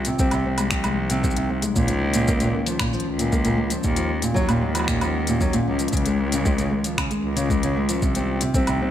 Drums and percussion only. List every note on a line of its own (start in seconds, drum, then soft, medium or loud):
0.05 closed hi-hat medium
0.05 shaker medium
0.19 kick loud
0.19 shaker medium
0.31 closed hi-hat soft
0.31 low woodblock medium
0.31 shaker soft
0.58 closed hi-hat soft
0.58 low woodblock medium
0.58 shaker medium
0.71 finger snap medium
0.71 kick loud
0.71 shaker medium
0.84 closed hi-hat soft
0.84 low woodblock medium
0.84 shaker soft
1.10 closed hi-hat medium
1.10 shaker medium
1.24 kick loud
1.24 shaker medium
1.31 shaker soft
1.37 closed hi-hat soft
1.62 closed hi-hat soft
1.62 shaker medium
1.76 kick loud
1.76 shaker medium
1.88 closed hi-hat soft
1.88 shaker soft
2.14 closed hi-hat soft
2.14 shaker medium
2.28 kick loud
2.28 shaker medium
2.40 closed hi-hat soft
2.40 shaker soft
2.67 closed hi-hat soft
2.67 shaker medium
2.79 finger snap medium
2.79 kick loud
2.79 low woodblock medium
2.79 shaker medium
2.93 shaker soft
3.00 closed hi-hat soft
3.19 closed hi-hat soft
3.19 shaker medium
3.32 kick loud
3.32 shaker medium
3.45 closed hi-hat soft
3.45 shaker soft
3.70 closed hi-hat soft
3.70 shaker medium
3.83 kick loud
3.83 shaker medium
3.96 closed hi-hat soft
3.96 shaker soft
4.22 closed hi-hat medium
4.22 shaker medium
4.36 kick loud
4.36 shaker medium
4.49 closed hi-hat soft
4.49 low woodblock medium
4.49 shaker soft
4.75 closed hi-hat soft
4.75 low woodblock soft
4.75 shaker medium
4.80 low woodblock soft
4.84 finger snap medium
4.84 low woodblock soft
4.88 kick loud
4.88 shaker medium
5.01 closed hi-hat soft
5.01 low woodblock medium
5.01 shaker soft
5.27 closed hi-hat soft
5.27 shaker medium
5.41 kick loud
5.41 shaker medium
5.53 closed hi-hat soft
5.53 shaker soft
5.79 closed hi-hat soft
5.79 shaker medium
5.88 closed hi-hat soft
5.93 kick loud
5.93 shaker medium
5.97 closed hi-hat soft
6.06 closed hi-hat soft
6.06 shaker soft
6.32 closed hi-hat soft
6.32 shaker medium
6.46 kick loud
6.46 shaker medium
6.58 closed hi-hat soft
6.58 shaker soft
6.84 closed hi-hat soft
6.84 shaker medium
6.98 finger snap medium
6.98 kick medium
6.98 low woodblock medium
6.98 shaker medium
7.11 closed hi-hat soft
7.11 shaker soft
7.37 closed hi-hat soft
7.37 shaker medium
7.50 kick loud
7.50 shaker medium
7.63 closed hi-hat soft
7.63 shaker soft
7.89 closed hi-hat soft
7.89 shaker medium
8.02 kick loud
8.02 shaker soft
8.15 closed hi-hat soft
8.15 shaker soft
8.41 closed hi-hat medium
8.41 shaker medium
8.54 kick loud
8.54 shaker medium
8.67 closed hi-hat soft
8.67 low woodblock medium
8.67 shaker soft